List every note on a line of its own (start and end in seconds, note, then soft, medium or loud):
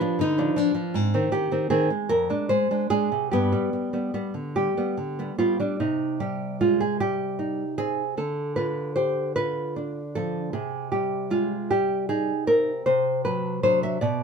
0.00 0.18 F3 medium
0.00 0.20 D4 medium
0.00 0.18 D4 medium
0.00 0.90 B4 loud
0.19 0.49 D3 medium
0.19 0.58 D#4 medium
0.38 0.55 F3 medium
0.38 0.55 D4 medium
0.56 0.73 F3 medium
0.56 0.74 D4 medium
0.56 0.95 D4 medium
0.75 0.94 F3 medium
0.94 1.13 G#2 medium
0.94 3.32 C4 medium
1.14 1.31 D#3 medium
1.14 1.31 C4 medium
1.32 1.50 D#3 medium
1.32 1.69 G4 medium
1.51 1.69 D#3 medium
1.51 1.69 C4 medium
1.70 1.88 D#3 medium
1.70 1.88 C4 medium
1.70 2.08 G#4 medium
1.90 2.10 G#3 medium
2.09 2.30 F2 medium
2.09 2.48 A#4 medium
2.30 2.48 G#3 medium
2.30 2.48 D4 medium
2.49 2.70 G#3 medium
2.49 2.89 C5 medium
2.71 2.89 G#3 medium
2.71 2.89 D4 medium
2.90 3.09 G#3 medium
2.90 3.09 D4 medium
2.90 3.30 G#4 loud
3.12 3.32 C3 medium
3.31 3.52 G2 medium
3.31 5.14 B3 medium
3.31 4.54 G4 medium
3.52 3.71 G3 medium
3.52 3.71 B3 medium
3.73 3.92 G3 soft
3.93 4.12 G3 soft
3.93 4.12 B3 medium
4.14 4.33 G3 medium
4.14 4.33 B3 medium
4.34 4.68 D3 soft
4.56 4.76 G3 medium
4.56 5.35 G4 medium
4.77 4.95 G3 soft
4.77 4.96 B3 medium
4.97 5.30 D3 soft
5.19 5.37 G3 soft
5.19 5.37 B3 medium
5.38 5.57 G3 medium
5.38 5.57 B3 medium
5.38 5.59 F4 medium
5.60 5.79 G3 medium
5.60 5.79 D4 medium
5.80 8.14 C3 soft
5.80 6.18 D#4 medium
6.20 6.84 G3 soft
6.20 6.58 G4 medium
6.61 7.00 G#3 soft
6.61 6.80 F4 medium
6.80 7.00 G#4 medium
7.00 7.63 G3 medium
7.00 7.76 G4 medium
7.39 8.02 D#4 soft
7.78 8.18 C4 medium
7.78 8.16 G#4 medium
8.17 10.50 D3 medium
8.17 8.55 A4 medium
8.56 8.96 F4 soft
8.56 8.95 B4 medium
8.96 9.36 G4 medium
8.96 9.34 C5 medium
9.36 10.00 F4 medium
9.36 9.74 B4 medium
9.76 10.39 D4 soft
10.15 10.53 F3 soft
10.15 10.53 A4 medium
10.53 12.81 C3 medium
10.53 10.91 G#4 medium
10.92 11.55 G3 soft
10.92 11.30 G4 medium
11.30 11.70 G#3 soft
11.30 11.69 F4 medium
11.71 12.32 G3 medium
11.71 12.07 G4 medium
12.09 12.71 D#4 medium
12.09 12.46 G#4 medium
12.47 12.86 C4 soft
12.47 12.84 A#4 medium
12.86 13.97 C3 medium
12.86 13.23 C5 medium
13.25 13.62 F#3 soft
13.25 13.61 B4 medium
13.63 13.97 F#3 medium
13.63 13.97 D4 medium
13.63 13.82 C5 medium
13.83 14.01 E5 medium
14.01 14.23 B2 medium
14.01 14.23 D5 medium